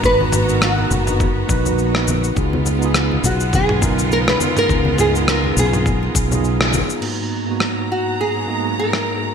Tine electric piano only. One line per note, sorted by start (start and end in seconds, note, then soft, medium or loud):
0.00 0.02 B3 loud
0.00 0.44 B3 medium
0.00 0.03 D#4 medium
0.00 0.45 D#4 medium
0.00 0.04 F#4 medium
0.00 0.52 A#4 medium
0.00 0.05 B4 loud
0.04 0.45 F#4 medium
0.04 0.46 B4 medium
0.46 1.44 B3 medium
0.46 1.45 D#4 medium
0.50 1.46 F#4 medium
0.50 1.48 A#4 medium
1.48 1.67 B3 loud
1.48 1.68 D#4 medium
1.48 1.69 F#4 medium
1.48 1.69 B4 loud
2.35 2.77 B3 medium
2.35 2.78 D#4 medium
2.35 2.79 F4 medium
2.35 2.79 G#4 medium
2.79 3.77 B3 medium
2.79 3.79 D#4 medium
2.83 3.80 F4 medium
2.83 3.81 G#4 medium
3.81 4.01 B3 loud
3.81 4.01 D#4 medium
3.81 4.02 F4 medium
3.81 4.02 A#4 loud
4.68 5.10 B3 medium
4.68 5.11 D#4 medium
4.68 5.11 F4 medium
4.68 5.12 G#4 medium
5.12 6.10 B3 medium
5.12 6.11 D#4 medium
5.16 6.12 F4 medium
5.16 6.14 G#4 medium
6.28 6.98 B3 medium
6.28 6.99 D#4 medium
6.32 7.00 F4 medium
6.32 7.01 G#4 medium
7.01 7.43 G#2 medium
7.01 7.44 A#3 medium
7.01 7.44 B3 medium
7.01 7.44 D#4 medium
7.01 7.45 F#4 medium
7.45 8.43 G#2 medium
7.45 8.44 A#3 medium
7.45 8.45 B3 medium
7.50 8.46 D#4 medium
7.50 8.47 F#4 medium
8.47 8.67 G#2 medium
8.47 8.67 A#3 medium
8.47 8.67 B3 medium
8.47 8.68 D#4 medium
8.47 8.68 G#4 medium